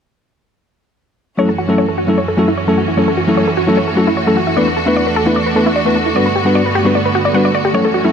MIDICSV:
0, 0, Header, 1, 4, 480
1, 0, Start_track
1, 0, Tempo, 397351
1, 1674, Time_signature, 4, 2, 24, 8
1, 9813, End_track
2, 0, Start_track
2, 0, Title_t, "Synth arpeggio sound"
2, 0, Program_c, 0, 84
2, 1674, Note_on_c, 0, 73, 79
2, 1747, Note_off_c, 0, 73, 0
2, 1797, Note_on_c, 0, 69, 67
2, 1839, Note_off_c, 0, 69, 0
2, 1913, Note_on_c, 0, 66, 70
2, 1957, Note_off_c, 0, 66, 0
2, 2035, Note_on_c, 0, 64, 67
2, 2140, Note_off_c, 0, 64, 0
2, 2152, Note_on_c, 0, 73, 79
2, 2226, Note_off_c, 0, 73, 0
2, 2277, Note_on_c, 0, 69, 69
2, 2346, Note_off_c, 0, 69, 0
2, 2390, Note_on_c, 0, 66, 92
2, 2466, Note_off_c, 0, 66, 0
2, 2515, Note_on_c, 0, 64, 72
2, 2558, Note_off_c, 0, 64, 0
2, 2630, Note_on_c, 0, 73, 80
2, 2706, Note_off_c, 0, 73, 0
2, 2757, Note_on_c, 0, 69, 70
2, 2799, Note_off_c, 0, 69, 0
2, 2872, Note_on_c, 0, 66, 69
2, 2917, Note_off_c, 0, 66, 0
2, 2995, Note_on_c, 0, 64, 94
2, 3065, Note_off_c, 0, 64, 0
2, 3111, Note_on_c, 0, 73, 77
2, 3223, Note_off_c, 0, 73, 0
2, 3236, Note_on_c, 0, 69, 72
2, 3306, Note_off_c, 0, 69, 0
2, 3354, Note_on_c, 0, 66, 71
2, 3464, Note_off_c, 0, 66, 0
2, 3478, Note_on_c, 0, 64, 69
2, 3519, Note_off_c, 0, 64, 0
2, 3594, Note_on_c, 0, 73, 83
2, 3667, Note_off_c, 0, 73, 0
2, 3719, Note_on_c, 0, 69, 71
2, 3760, Note_off_c, 0, 69, 0
2, 3834, Note_on_c, 0, 66, 75
2, 3878, Note_off_c, 0, 66, 0
2, 3959, Note_on_c, 0, 64, 67
2, 4062, Note_off_c, 0, 64, 0
2, 4075, Note_on_c, 0, 73, 77
2, 4148, Note_off_c, 0, 73, 0
2, 4199, Note_on_c, 0, 69, 76
2, 4267, Note_off_c, 0, 69, 0
2, 4315, Note_on_c, 0, 66, 95
2, 4388, Note_off_c, 0, 66, 0
2, 4438, Note_on_c, 0, 64, 71
2, 4479, Note_off_c, 0, 64, 0
2, 4556, Note_on_c, 0, 73, 77
2, 4628, Note_off_c, 0, 73, 0
2, 4680, Note_on_c, 0, 69, 68
2, 4720, Note_off_c, 0, 69, 0
2, 4797, Note_on_c, 0, 66, 71
2, 4840, Note_off_c, 0, 66, 0
2, 4921, Note_on_c, 0, 64, 100
2, 4988, Note_off_c, 0, 64, 0
2, 5037, Note_on_c, 0, 73, 75
2, 5146, Note_off_c, 0, 73, 0
2, 5161, Note_on_c, 0, 69, 75
2, 5228, Note_off_c, 0, 69, 0
2, 5276, Note_on_c, 0, 66, 71
2, 5385, Note_off_c, 0, 66, 0
2, 5401, Note_on_c, 0, 64, 71
2, 5441, Note_off_c, 0, 64, 0
2, 5517, Note_on_c, 0, 74, 79
2, 5589, Note_off_c, 0, 74, 0
2, 5643, Note_on_c, 0, 71, 68
2, 5682, Note_off_c, 0, 71, 0
2, 5757, Note_on_c, 0, 69, 73
2, 5800, Note_off_c, 0, 69, 0
2, 5880, Note_on_c, 0, 64, 71
2, 5982, Note_off_c, 0, 64, 0
2, 5997, Note_on_c, 0, 74, 78
2, 6069, Note_off_c, 0, 74, 0
2, 6121, Note_on_c, 0, 71, 72
2, 6188, Note_off_c, 0, 71, 0
2, 6237, Note_on_c, 0, 69, 96
2, 6309, Note_off_c, 0, 69, 0
2, 6360, Note_on_c, 0, 64, 70
2, 6400, Note_off_c, 0, 64, 0
2, 6475, Note_on_c, 0, 74, 75
2, 6548, Note_off_c, 0, 74, 0
2, 6600, Note_on_c, 0, 71, 74
2, 6640, Note_off_c, 0, 71, 0
2, 6716, Note_on_c, 0, 69, 75
2, 6759, Note_off_c, 0, 69, 0
2, 6840, Note_on_c, 0, 64, 94
2, 6907, Note_off_c, 0, 64, 0
2, 6954, Note_on_c, 0, 74, 80
2, 7064, Note_off_c, 0, 74, 0
2, 7079, Note_on_c, 0, 71, 74
2, 7147, Note_off_c, 0, 71, 0
2, 7196, Note_on_c, 0, 69, 70
2, 7305, Note_off_c, 0, 69, 0
2, 7320, Note_on_c, 0, 64, 69
2, 7360, Note_off_c, 0, 64, 0
2, 7437, Note_on_c, 0, 74, 83
2, 7509, Note_off_c, 0, 74, 0
2, 7560, Note_on_c, 0, 71, 68
2, 7600, Note_off_c, 0, 71, 0
2, 7677, Note_on_c, 0, 67, 72
2, 7720, Note_off_c, 0, 67, 0
2, 7801, Note_on_c, 0, 66, 69
2, 7902, Note_off_c, 0, 66, 0
2, 7916, Note_on_c, 0, 74, 83
2, 7988, Note_off_c, 0, 74, 0
2, 8042, Note_on_c, 0, 71, 71
2, 8109, Note_off_c, 0, 71, 0
2, 8156, Note_on_c, 0, 67, 98
2, 8229, Note_off_c, 0, 67, 0
2, 8281, Note_on_c, 0, 66, 71
2, 8321, Note_off_c, 0, 66, 0
2, 8396, Note_on_c, 0, 74, 78
2, 8469, Note_off_c, 0, 74, 0
2, 8521, Note_on_c, 0, 71, 73
2, 8561, Note_off_c, 0, 71, 0
2, 8637, Note_on_c, 0, 66, 93
2, 8680, Note_off_c, 0, 66, 0
2, 8759, Note_on_c, 0, 74, 74
2, 8827, Note_off_c, 0, 74, 0
2, 8873, Note_on_c, 0, 78, 83
2, 8918, Note_off_c, 0, 78, 0
2, 8999, Note_on_c, 0, 74, 69
2, 9067, Note_off_c, 0, 74, 0
2, 9115, Note_on_c, 0, 74, 74
2, 9188, Note_off_c, 0, 74, 0
2, 9239, Note_on_c, 0, 67, 71
2, 9307, Note_off_c, 0, 67, 0
2, 9356, Note_on_c, 0, 73, 79
2, 9428, Note_off_c, 0, 73, 0
2, 9478, Note_on_c, 0, 69, 71
2, 9520, Note_off_c, 0, 69, 0
2, 9594, Note_on_c, 0, 66, 70
2, 9638, Note_off_c, 0, 66, 0
2, 9718, Note_on_c, 0, 64, 70
2, 9813, Note_off_c, 0, 64, 0
2, 9813, End_track
3, 0, Start_track
3, 0, Title_t, "Tine electric piano"
3, 0, Program_c, 1, 4
3, 1660, Note_on_c, 1, 54, 64
3, 1666, Note_on_c, 1, 57, 60
3, 1672, Note_on_c, 1, 61, 61
3, 1678, Note_on_c, 1, 64, 61
3, 1685, Note_on_c, 1, 69, 72
3, 1788, Note_off_c, 1, 54, 0
3, 1792, Note_off_c, 1, 57, 0
3, 1794, Note_off_c, 1, 61, 0
3, 1797, Note_off_c, 1, 64, 0
3, 1801, Note_off_c, 1, 69, 0
3, 2026, Note_on_c, 1, 54, 68
3, 2032, Note_on_c, 1, 57, 66
3, 2037, Note_on_c, 1, 61, 62
3, 2044, Note_on_c, 1, 64, 64
3, 2050, Note_on_c, 1, 69, 78
3, 2218, Note_off_c, 1, 54, 0
3, 2221, Note_off_c, 1, 57, 0
3, 2224, Note_off_c, 1, 61, 0
3, 2227, Note_off_c, 1, 64, 0
3, 2230, Note_off_c, 1, 69, 0
3, 2505, Note_on_c, 1, 54, 72
3, 2511, Note_on_c, 1, 57, 68
3, 2517, Note_on_c, 1, 61, 68
3, 2524, Note_on_c, 1, 64, 68
3, 2530, Note_on_c, 1, 69, 80
3, 2625, Note_off_c, 1, 54, 0
3, 2628, Note_off_c, 1, 57, 0
3, 2631, Note_off_c, 1, 61, 0
3, 2634, Note_off_c, 1, 64, 0
3, 2638, Note_off_c, 1, 69, 0
3, 2861, Note_on_c, 1, 54, 76
3, 2866, Note_on_c, 1, 57, 69
3, 2874, Note_on_c, 1, 61, 68
3, 2879, Note_on_c, 1, 64, 66
3, 2885, Note_on_c, 1, 69, 79
3, 2989, Note_off_c, 1, 54, 0
3, 2992, Note_off_c, 1, 57, 0
3, 2995, Note_off_c, 1, 61, 0
3, 2998, Note_off_c, 1, 64, 0
3, 3001, Note_off_c, 1, 69, 0
3, 3226, Note_on_c, 1, 54, 66
3, 3232, Note_on_c, 1, 57, 62
3, 3238, Note_on_c, 1, 61, 63
3, 3245, Note_on_c, 1, 64, 63
3, 3251, Note_on_c, 1, 69, 77
3, 3345, Note_off_c, 1, 54, 0
3, 3349, Note_off_c, 1, 57, 0
3, 3352, Note_off_c, 1, 61, 0
3, 3355, Note_off_c, 1, 64, 0
3, 3358, Note_off_c, 1, 69, 0
3, 3583, Note_on_c, 1, 54, 67
3, 3590, Note_on_c, 1, 57, 58
3, 3596, Note_on_c, 1, 61, 62
3, 3601, Note_on_c, 1, 64, 62
3, 3607, Note_on_c, 1, 69, 75
3, 3710, Note_off_c, 1, 54, 0
3, 3713, Note_off_c, 1, 57, 0
3, 3716, Note_off_c, 1, 61, 0
3, 3719, Note_off_c, 1, 64, 0
3, 3722, Note_off_c, 1, 69, 0
3, 3948, Note_on_c, 1, 54, 69
3, 3954, Note_on_c, 1, 57, 67
3, 3960, Note_on_c, 1, 61, 66
3, 3967, Note_on_c, 1, 64, 65
3, 3972, Note_on_c, 1, 69, 77
3, 4139, Note_off_c, 1, 54, 0
3, 4142, Note_off_c, 1, 57, 0
3, 4145, Note_off_c, 1, 61, 0
3, 4149, Note_off_c, 1, 64, 0
3, 4151, Note_off_c, 1, 69, 0
3, 4428, Note_on_c, 1, 54, 76
3, 4435, Note_on_c, 1, 57, 68
3, 4440, Note_on_c, 1, 61, 66
3, 4446, Note_on_c, 1, 64, 69
3, 4452, Note_on_c, 1, 69, 84
3, 4546, Note_off_c, 1, 54, 0
3, 4550, Note_off_c, 1, 57, 0
3, 4552, Note_off_c, 1, 61, 0
3, 4556, Note_off_c, 1, 64, 0
3, 4559, Note_off_c, 1, 69, 0
3, 4784, Note_on_c, 1, 54, 73
3, 4790, Note_on_c, 1, 57, 69
3, 4796, Note_on_c, 1, 61, 65
3, 4802, Note_on_c, 1, 64, 68
3, 4808, Note_on_c, 1, 69, 81
3, 4910, Note_off_c, 1, 54, 0
3, 4914, Note_off_c, 1, 57, 0
3, 4916, Note_off_c, 1, 61, 0
3, 4919, Note_off_c, 1, 64, 0
3, 4922, Note_off_c, 1, 69, 0
3, 5147, Note_on_c, 1, 54, 68
3, 5152, Note_on_c, 1, 57, 61
3, 5159, Note_on_c, 1, 61, 67
3, 5165, Note_on_c, 1, 64, 65
3, 5170, Note_on_c, 1, 69, 77
3, 5266, Note_off_c, 1, 54, 0
3, 5269, Note_off_c, 1, 57, 0
3, 5272, Note_off_c, 1, 61, 0
3, 5275, Note_off_c, 1, 64, 0
3, 5278, Note_off_c, 1, 69, 0
3, 5505, Note_on_c, 1, 57, 68
3, 5511, Note_on_c, 1, 59, 60
3, 5517, Note_on_c, 1, 62, 59
3, 5523, Note_on_c, 1, 64, 62
3, 5529, Note_on_c, 1, 71, 72
3, 5631, Note_off_c, 1, 57, 0
3, 5634, Note_off_c, 1, 59, 0
3, 5637, Note_off_c, 1, 62, 0
3, 5640, Note_off_c, 1, 64, 0
3, 5643, Note_off_c, 1, 71, 0
3, 5868, Note_on_c, 1, 57, 67
3, 5875, Note_on_c, 1, 59, 65
3, 5880, Note_on_c, 1, 62, 67
3, 5886, Note_on_c, 1, 64, 65
3, 5892, Note_on_c, 1, 71, 81
3, 6059, Note_off_c, 1, 57, 0
3, 6063, Note_off_c, 1, 59, 0
3, 6065, Note_off_c, 1, 62, 0
3, 6068, Note_off_c, 1, 64, 0
3, 6071, Note_off_c, 1, 71, 0
3, 6346, Note_on_c, 1, 57, 76
3, 6352, Note_on_c, 1, 59, 65
3, 6357, Note_on_c, 1, 62, 68
3, 6363, Note_on_c, 1, 64, 70
3, 6369, Note_on_c, 1, 71, 84
3, 6465, Note_off_c, 1, 57, 0
3, 6468, Note_off_c, 1, 59, 0
3, 6471, Note_off_c, 1, 62, 0
3, 6474, Note_off_c, 1, 64, 0
3, 6477, Note_off_c, 1, 71, 0
3, 6704, Note_on_c, 1, 57, 75
3, 6710, Note_on_c, 1, 59, 65
3, 6717, Note_on_c, 1, 62, 68
3, 6722, Note_on_c, 1, 64, 71
3, 6728, Note_on_c, 1, 71, 83
3, 6830, Note_off_c, 1, 57, 0
3, 6833, Note_off_c, 1, 59, 0
3, 6837, Note_off_c, 1, 62, 0
3, 6839, Note_off_c, 1, 64, 0
3, 6843, Note_off_c, 1, 71, 0
3, 7066, Note_on_c, 1, 57, 69
3, 7072, Note_on_c, 1, 59, 63
3, 7078, Note_on_c, 1, 62, 63
3, 7084, Note_on_c, 1, 64, 61
3, 7090, Note_on_c, 1, 71, 76
3, 7186, Note_off_c, 1, 57, 0
3, 7188, Note_off_c, 1, 59, 0
3, 7192, Note_off_c, 1, 62, 0
3, 7195, Note_off_c, 1, 64, 0
3, 7198, Note_off_c, 1, 71, 0
3, 7423, Note_on_c, 1, 55, 64
3, 7429, Note_on_c, 1, 59, 64
3, 7435, Note_on_c, 1, 62, 61
3, 7441, Note_on_c, 1, 66, 61
3, 7447, Note_on_c, 1, 71, 72
3, 7550, Note_off_c, 1, 55, 0
3, 7553, Note_off_c, 1, 59, 0
3, 7556, Note_off_c, 1, 62, 0
3, 7559, Note_off_c, 1, 66, 0
3, 7562, Note_off_c, 1, 71, 0
3, 7789, Note_on_c, 1, 55, 70
3, 7794, Note_on_c, 1, 59, 62
3, 7800, Note_on_c, 1, 62, 63
3, 7807, Note_on_c, 1, 66, 63
3, 7812, Note_on_c, 1, 71, 74
3, 7980, Note_off_c, 1, 55, 0
3, 7982, Note_off_c, 1, 59, 0
3, 7985, Note_off_c, 1, 62, 0
3, 7989, Note_off_c, 1, 66, 0
3, 7991, Note_off_c, 1, 71, 0
3, 8268, Note_on_c, 1, 55, 77
3, 8274, Note_on_c, 1, 59, 70
3, 8279, Note_on_c, 1, 62, 71
3, 8286, Note_on_c, 1, 66, 66
3, 8292, Note_on_c, 1, 71, 82
3, 8386, Note_off_c, 1, 55, 0
3, 8389, Note_off_c, 1, 59, 0
3, 8392, Note_off_c, 1, 62, 0
3, 8395, Note_off_c, 1, 66, 0
3, 8399, Note_off_c, 1, 71, 0
3, 8863, Note_on_c, 1, 55, 74
3, 8869, Note_on_c, 1, 59, 67
3, 8875, Note_on_c, 1, 62, 68
3, 8881, Note_on_c, 1, 66, 67
3, 8887, Note_on_c, 1, 71, 79
3, 9058, Note_off_c, 1, 55, 0
3, 9061, Note_off_c, 1, 59, 0
3, 9064, Note_off_c, 1, 62, 0
3, 9067, Note_off_c, 1, 66, 0
3, 9070, Note_off_c, 1, 71, 0
3, 9341, Note_on_c, 1, 54, 64
3, 9347, Note_on_c, 1, 57, 62
3, 9353, Note_on_c, 1, 61, 64
3, 9359, Note_on_c, 1, 64, 61
3, 9365, Note_on_c, 1, 69, 70
3, 9469, Note_off_c, 1, 54, 0
3, 9472, Note_off_c, 1, 57, 0
3, 9475, Note_off_c, 1, 61, 0
3, 9478, Note_off_c, 1, 64, 0
3, 9481, Note_off_c, 1, 69, 0
3, 9706, Note_on_c, 1, 54, 70
3, 9711, Note_on_c, 1, 57, 65
3, 9718, Note_on_c, 1, 61, 65
3, 9724, Note_on_c, 1, 64, 66
3, 9729, Note_on_c, 1, 69, 81
3, 9813, Note_off_c, 1, 54, 0
3, 9813, Note_off_c, 1, 57, 0
3, 9813, Note_off_c, 1, 61, 0
3, 9813, Note_off_c, 1, 64, 0
3, 9813, Note_off_c, 1, 69, 0
3, 9813, End_track
4, 0, Start_track
4, 0, Title_t, "String section"
4, 0, Program_c, 2, 48
4, 1674, Note_on_c, 2, 42, 72
4, 1674, Note_on_c, 2, 52, 70
4, 1675, Note_on_c, 2, 57, 69
4, 1675, Note_on_c, 2, 61, 65
4, 1675, Note_on_c, 2, 66, 82
4, 5476, Note_off_c, 2, 42, 0
4, 5476, Note_off_c, 2, 61, 0
4, 5514, Note_on_c, 2, 62, 70
4, 5515, Note_on_c, 2, 40, 77
4, 7386, Note_off_c, 2, 52, 0
4, 7415, Note_off_c, 2, 40, 0
4, 7415, Note_off_c, 2, 62, 0
4, 7434, Note_on_c, 2, 59, 73
4, 7435, Note_on_c, 2, 43, 74
4, 7435, Note_on_c, 2, 50, 68
4, 9335, Note_off_c, 2, 50, 0
4, 9335, Note_off_c, 2, 59, 0
4, 9336, Note_off_c, 2, 43, 0
4, 9351, Note_on_c, 2, 42, 74
4, 9351, Note_on_c, 2, 52, 70
4, 9352, Note_on_c, 2, 61, 66
4, 9813, Note_off_c, 2, 42, 0
4, 9813, Note_off_c, 2, 52, 0
4, 9813, Note_off_c, 2, 57, 0
4, 9813, Note_off_c, 2, 61, 0
4, 9813, Note_off_c, 2, 66, 0
4, 9813, End_track
0, 0, End_of_file